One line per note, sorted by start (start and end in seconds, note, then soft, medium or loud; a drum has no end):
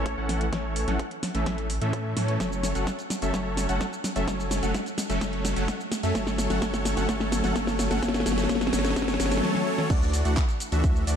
0.00 0.15 A1 loud
0.00 0.15 E3 medium
0.00 0.15 A3 medium
0.00 0.15 C#4 medium
0.00 0.15 A4 medium
0.00 0.15 C#5 medium
0.06 kick loud
0.06 closed hi-hat medium
0.17 0.50 A1 medium
0.17 0.44 E3 medium
0.17 0.44 A3 medium
0.17 0.44 C#4 medium
0.17 0.44 A4 medium
0.17 0.44 F#5 medium
0.29 snare medium
0.29 open hi-hat loud
0.41 closed hi-hat medium
0.53 0.85 A1 medium
0.53 0.85 E3 medium
0.53 0.85 A3 medium
0.53 0.85 C#4 medium
0.53 0.85 A4 medium
0.53 0.85 C#5 medium
0.53 kick loud
0.53 snare medium
0.53 closed hi-hat medium
0.76 open hi-hat loud
0.88 1.02 A1 loud
0.88 1.05 E3 medium
0.88 1.05 A3 medium
0.88 1.05 C#4 medium
0.88 1.05 A4 medium
0.88 1.05 F#5 medium
0.88 snare medium
0.88 closed hi-hat soft
0.99 kick loud
0.99 closed hi-hat medium
1.11 closed hi-hat soft
1.23 snare medium
1.23 open hi-hat loud
1.35 1.79 A1 medium
1.35 1.67 E3 medium
1.35 1.67 A3 medium
1.35 1.67 C#4 medium
1.35 1.67 A4 medium
1.35 1.67 E5 medium
1.35 closed hi-hat soft
1.46 kick loud
1.46 snare medium
1.46 closed hi-hat medium
1.58 closed hi-hat soft
1.70 open hi-hat loud
1.81 2.14 A2 loud
1.81 2.14 E3 medium
1.81 2.14 A3 medium
1.81 2.14 C#4 medium
1.81 2.14 A4 medium
1.81 2.14 E5 medium
1.81 closed hi-hat soft
1.93 kick loud
1.93 closed hi-hat medium
2.17 2.38 A2 loud
2.17 2.37 E3 medium
2.17 2.37 A3 medium
2.17 2.37 C#4 medium
2.17 2.37 A4 medium
2.17 2.37 C#5 medium
2.17 snare medium
2.17 open hi-hat loud
2.28 closed hi-hat soft
2.40 2.73 F#1 medium
2.40 2.72 F#3 medium
2.40 2.72 A3 medium
2.40 2.72 C#4 medium
2.40 2.72 A4 medium
2.40 2.72 C#5 medium
2.40 kick loud
2.40 snare medium
2.40 closed hi-hat medium
2.40 shaker soft
2.53 shaker soft
2.63 snare medium
2.63 open hi-hat loud
2.63 shaker medium
2.75 2.90 F#1 loud
2.75 2.92 F#3 medium
2.75 2.92 A3 medium
2.75 2.92 C#4 medium
2.75 2.92 A4 medium
2.75 2.92 F#5 medium
2.75 closed hi-hat soft
2.75 shaker soft
2.87 kick loud
2.87 snare medium
2.87 closed hi-hat medium
2.87 shaker soft
2.99 closed hi-hat soft
2.99 shaker soft
3.10 snare medium
3.10 open hi-hat loud
3.10 shaker medium
3.22 3.32 F#1 medium
3.22 3.32 F#3 medium
3.22 3.32 A3 medium
3.22 3.32 C#4 medium
3.22 3.32 A4 medium
3.22 3.32 E5 medium
3.22 closed hi-hat soft
3.22 shaker soft
3.34 3.67 F#1 loud
3.34 3.66 F#3 medium
3.34 3.66 A3 medium
3.34 3.66 C#4 medium
3.34 3.66 A4 medium
3.34 3.66 C#5 medium
3.34 kick loud
3.34 snare medium
3.34 closed hi-hat medium
3.34 shaker soft
3.57 snare medium
3.57 open hi-hat loud
3.57 shaker medium
3.69 3.83 F#1 loud
3.69 3.86 F#3 medium
3.69 3.86 A3 medium
3.69 3.86 C#4 medium
3.69 3.86 A4 medium
3.69 3.86 F#5 medium
3.69 closed hi-hat medium
3.69 shaker soft
3.81 kick loud
3.81 snare medium
3.81 closed hi-hat medium
3.81 shaker soft
3.93 shaker soft
4.04 snare medium
4.04 open hi-hat loud
4.04 shaker medium
4.16 4.25 F#1 loud
4.16 4.26 F#3 medium
4.16 4.26 A3 medium
4.16 4.26 C#4 medium
4.16 4.26 A4 medium
4.16 4.26 E5 medium
4.16 closed hi-hat soft
4.16 shaker soft
4.28 4.60 F#1 loud
4.28 kick loud
4.28 snare medium
4.28 closed hi-hat medium
4.28 shaker soft
4.40 shaker soft
4.51 snare medium
4.51 open hi-hat loud
4.51 shaker medium
4.63 4.77 F#1 medium
4.63 4.80 F#3 medium
4.63 4.80 A3 medium
4.63 4.80 C#4 medium
4.63 4.80 A4 medium
4.63 4.80 F#5 medium
4.63 closed hi-hat medium
4.63 shaker soft
4.74 kick loud
4.74 snare medium
4.74 closed hi-hat medium
4.74 shaker soft
4.86 closed hi-hat soft
4.86 shaker soft
4.98 snare medium
4.98 open hi-hat loud
4.98 shaker medium
5.10 5.19 F#1 loud
5.10 5.19 F#3 medium
5.10 5.19 A3 medium
5.10 5.19 C#4 medium
5.10 5.19 A4 medium
5.10 5.19 E5 medium
5.10 closed hi-hat medium
5.10 shaker soft
5.21 5.54 F#1 loud
5.21 5.54 F#3 medium
5.21 5.54 A3 medium
5.21 5.54 C#4 medium
5.21 5.54 A4 medium
5.21 5.54 C#5 medium
5.21 kick loud
5.21 snare medium
5.21 closed hi-hat medium
5.21 shaker soft
5.33 closed hi-hat soft
5.45 snare medium
5.45 open hi-hat loud
5.45 shaker medium
5.56 5.71 F#1 loud
5.56 5.73 F#3 medium
5.56 5.73 A3 medium
5.56 5.73 C#4 medium
5.56 5.73 A4 medium
5.56 5.73 F#5 medium
5.56 closed hi-hat medium
5.56 shaker soft
5.68 kick loud
5.68 snare medium
5.68 closed hi-hat medium
5.68 shaker soft
5.81 shaker soft
5.92 snare medium
5.92 open hi-hat loud
5.92 shaker medium
6.03 6.13 F#2 loud
6.03 6.13 F#3 medium
6.03 6.13 A3 medium
6.03 6.13 C#4 medium
6.03 6.13 A4 medium
6.03 6.13 E5 loud
6.03 closed hi-hat medium
6.03 shaker soft
6.15 6.48 G1 loud
6.15 6.47 F#3 medium
6.15 6.47 A3 medium
6.15 6.47 C#4 medium
6.15 6.47 A4 medium
6.15 6.47 C#5 medium
6.15 kick loud
6.15 snare medium
6.15 closed hi-hat medium
6.15 shaker soft
6.27 snare medium
6.27 shaker soft
6.38 snare medium
6.38 open hi-hat loud
6.38 shaker medium
6.50 6.60 G1 loud
6.50 6.60 F#3 medium
6.50 6.60 A3 medium
6.50 6.60 C#4 medium
6.50 6.60 A4 medium
6.50 6.60 F#5 medium
6.50 snare medium
6.50 closed hi-hat medium
6.50 shaker soft
6.62 6.95 G1 loud
6.62 6.94 F#3 medium
6.62 6.94 A3 medium
6.62 6.94 C#4 medium
6.62 6.94 A4 medium
6.62 6.94 C#5 medium
6.62 kick loud
6.62 snare medium
6.62 closed hi-hat medium
6.62 shaker soft
6.74 snare medium
6.74 closed hi-hat soft
6.74 shaker soft
6.85 snare loud
6.85 open hi-hat loud
6.85 shaker medium
6.97 7.06 G1 medium
6.97 7.07 F#3 medium
6.97 7.07 A3 medium
6.97 7.07 C#4 medium
6.97 7.07 A4 medium
6.97 7.07 F#5 medium
6.97 snare medium
6.97 closed hi-hat medium
6.97 shaker soft
7.09 7.42 G1 loud
7.09 7.41 F#3 medium
7.09 7.41 A3 medium
7.09 7.41 C#4 medium
7.09 7.41 C#5 medium
7.09 kick loud
7.09 snare loud
7.09 closed hi-hat medium
7.09 shaker soft
7.20 snare medium
7.32 snare loud
7.32 open hi-hat loud
7.32 shaker medium
7.44 7.53 G1 loud
7.44 7.54 F#3 medium
7.44 7.54 A3 medium
7.44 7.54 C#4 medium
7.44 7.54 A4 medium
7.44 7.54 F#5 medium
7.44 snare medium
7.44 closed hi-hat medium
7.44 shaker soft
7.56 7.89 G1 loud
7.56 7.88 F#3 medium
7.56 7.88 A3 medium
7.56 7.88 C#4 medium
7.56 7.88 A4 medium
7.56 7.88 C#5 medium
7.56 kick loud
7.56 snare loud
7.56 closed hi-hat medium
7.56 shaker soft
7.67 snare medium
7.67 shaker soft
7.79 snare loud
7.79 open hi-hat loud
7.79 shaker medium
7.91 8.00 G1 loud
7.91 8.01 F#3 medium
7.91 8.01 A3 medium
7.91 8.01 C#4 medium
7.91 8.01 A4 medium
7.91 8.01 F#5 medium
7.91 snare medium
7.91 closed hi-hat medium
7.91 shaker soft
8.03 8.24 G1 loud
8.03 8.24 F#3 medium
8.03 8.24 A3 medium
8.03 8.24 C#4 medium
8.03 8.24 A4 medium
8.03 8.24 C#5 medium
8.03 kick loud
8.03 snare loud
8.03 closed hi-hat medium
8.03 shaker soft
8.08 snare medium
8.14 snare medium
8.14 closed hi-hat soft
8.14 shaker soft
8.20 snare medium
8.26 8.47 G1 loud
8.26 8.48 F#3 medium
8.26 8.48 A3 medium
8.26 8.48 C#4 medium
8.26 8.48 A4 medium
8.26 8.48 C#5 medium
8.26 snare loud
8.26 open hi-hat loud
8.26 shaker medium
8.32 snare medium
8.38 snare medium
8.38 closed hi-hat medium
8.38 shaker soft
8.44 snare medium
8.49 8.71 G1 loud
8.49 8.71 F#3 medium
8.49 8.71 A3 medium
8.49 8.71 C#4 medium
8.49 8.71 A4 medium
8.49 8.71 C#5 medium
8.49 kick loud
8.49 snare loud
8.49 closed hi-hat medium
8.49 shaker soft
8.55 snare medium
8.61 snare medium
8.61 closed hi-hat soft
8.61 shaker soft
8.67 snare loud
8.73 8.94 G1 loud
8.73 8.94 F#3 medium
8.73 8.94 A3 medium
8.73 8.94 C#4 medium
8.73 8.94 A4 medium
8.73 8.94 C#5 medium
8.73 snare loud
8.73 open hi-hat loud
8.73 shaker medium
8.79 snare loud
8.85 snare medium
8.85 closed hi-hat medium
8.85 shaker soft
8.90 snare medium
8.96 9.17 G1 loud
8.96 9.18 F#3 medium
8.96 9.18 A3 medium
8.96 9.18 C#4 medium
8.96 9.18 A4 medium
8.96 9.18 C#5 medium
8.96 kick loud
8.96 snare loud
8.96 closed hi-hat medium
8.96 shaker soft
9.02 snare medium
9.08 snare medium
9.08 closed hi-hat soft
9.08 shaker soft
9.14 snare medium
9.20 9.41 G1 loud
9.20 9.41 F#3 medium
9.20 9.41 A3 medium
9.20 9.41 C#4 medium
9.20 9.41 A4 medium
9.20 9.41 C#5 loud
9.20 snare loud
9.20 open hi-hat loud
9.20 shaker medium
9.26 snare medium
9.31 snare loud
9.31 open hi-hat medium
9.31 shaker soft
9.37 snare loud
9.43 9.65 F#3 medium
9.43 9.65 A3 medium
9.43 9.65 C#4 medium
9.43 9.65 A4 medium
9.43 9.65 C#5 loud
9.43 snare medium
9.55 snare medium
9.67 9.88 F#3 medium
9.67 9.88 A3 medium
9.67 9.88 C#4 medium
9.67 9.88 A4 medium
9.67 9.88 C#5 loud
9.78 snare medium
9.90 10.23 D2 loud
9.90 10.22 E3 medium
9.90 10.22 A3 medium
9.90 10.22 D4 medium
9.90 10.22 F#4 medium
9.90 10.22 D5 medium
9.90 kick loud
9.90 closed hi-hat medium
9.90 crash loud
9.90 shaker soft
10.02 shaker soft
10.13 open hi-hat loud
10.13 shaker medium
10.25 10.40 D2 medium
10.25 10.42 E3 medium
10.25 10.42 A3 medium
10.25 10.42 D4 medium
10.25 10.42 F#4 medium
10.25 10.42 F#5 medium
10.25 closed hi-hat medium
10.25 shaker soft
10.37 kick loud
10.37 clap loud
10.37 closed hi-hat medium
10.37 shaker soft
10.49 closed hi-hat soft
10.49 shaker soft
10.60 open hi-hat loud
10.60 shaker medium
10.72 11.05 D2 loud
10.72 11.04 E3 medium
10.72 11.04 A3 medium
10.72 11.04 D4 medium
10.72 11.04 F#4 medium
10.72 11.04 E5 medium
10.72 closed hi-hat medium
10.72 shaker soft
10.84 kick loud
10.84 closed hi-hat medium
10.84 shaker soft
10.96 shaker soft
11.07 11.16 D2 loud
11.07 11.16 E3 medium
11.07 11.16 A3 medium
11.07 11.16 D4 medium
11.07 11.16 F#4 medium
11.07 11.16 D5 loud
11.07 open hi-hat loud
11.07 shaker medium